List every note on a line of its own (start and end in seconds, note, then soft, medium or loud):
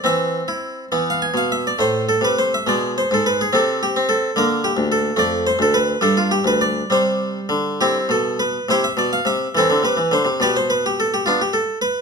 0.04 0.40 E3 medium
0.04 0.88 C4 soft
0.04 1.07 E5 medium
0.48 0.83 E4 medium
0.92 1.27 E3 medium
0.92 1.76 B3 soft
1.10 1.23 F5 medium
1.22 1.37 G#5 medium
1.34 1.70 B2 medium
1.34 1.52 F5 medium
1.52 1.66 E5 medium
1.67 1.81 D5 medium
1.79 2.13 A2 medium
1.79 2.62 A3 soft
1.79 2.04 C5 medium
2.09 2.23 A4 medium
2.21 2.57 C3 medium
2.21 2.38 B4 medium
2.39 2.53 C5 medium
2.54 2.68 E5 medium
2.67 3.01 B2 medium
2.67 3.48 G#3 soft
2.67 2.93 D5 medium
2.98 3.11 C5 medium
3.11 3.45 G#2 medium
3.11 3.26 A4 medium
3.26 3.39 B4 medium
3.41 3.54 G#4 medium
3.53 3.87 C3 medium
3.53 3.95 C4 soft
3.53 3.82 A4 medium
3.83 4.06 G4 medium
3.96 4.29 C4 medium
4.09 4.36 A4 loud
4.36 4.69 D3 medium
4.36 5.14 A#3 medium
4.36 4.64 A#4 loud
4.64 4.87 G4 loud
4.77 5.09 D2 medium
4.92 5.18 A4 medium
5.16 5.50 F2 medium
5.16 5.97 A3 medium
5.16 5.46 D5 loud
5.47 5.60 C5 loud
5.59 5.93 D2 medium
5.59 5.75 A4 loud
5.74 6.02 B4 loud
6.01 6.36 G2 medium
6.01 6.86 G3 medium
6.01 6.16 A4 loud
6.17 6.31 F4 medium
6.31 6.45 G4 loud
6.44 6.80 D2 medium
6.44 6.61 B4 loud
6.61 6.91 D5 loud
6.90 7.38 C3 medium
6.90 8.64 G3 soft
6.90 8.40 C5 loud
7.49 7.96 D3 medium
7.81 8.08 C4 medium
7.81 8.08 E4 medium
7.81 8.09 G4 medium
8.09 8.56 B2 medium
8.09 8.40 A4 medium
8.39 8.68 B4 medium
8.69 8.89 C3 medium
8.69 8.83 E4 medium
8.69 8.83 G4 medium
8.69 8.83 C5 loud
8.84 8.97 E5 loud
8.97 9.17 B2 medium
8.97 9.12 D5 medium
9.13 9.26 F5 medium
9.25 9.46 C3 medium
9.25 9.55 E5 medium
9.55 9.68 E3 medium
9.55 9.83 C4 medium
9.55 9.83 E4 medium
9.55 9.80 A4 medium
9.70 9.83 D3 medium
9.83 9.96 C3 medium
9.83 10.12 B4 medium
9.97 10.10 E3 medium
10.12 10.25 D3 medium
10.12 10.37 C5 medium
10.25 10.39 C3 medium
10.40 11.61 B2 medium
10.40 10.55 G4 medium
10.40 10.55 B4 medium
10.40 10.55 D5 medium
10.57 10.70 C5 medium
10.70 10.83 B4 medium
10.86 10.98 G4 medium
11.00 11.12 A4 medium
11.14 11.26 G4 medium
11.26 11.39 B3 medium
11.26 11.39 D4 medium
11.26 11.39 F4 medium
11.41 11.54 G4 medium
11.53 11.77 A4 medium
11.82 12.02 B4 medium